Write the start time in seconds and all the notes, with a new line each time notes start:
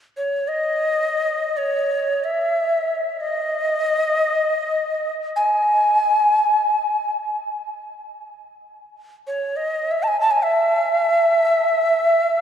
0.17 C#5
0.48 D#5
1.57 C#5
2.24 E5
3.20 D#5
5.36 G#5
9.27 C#5
9.56 D#5
9.91 E5
10.03 A5
10.08 G#5
10.21 A5
10.31 G#5
10.43 E5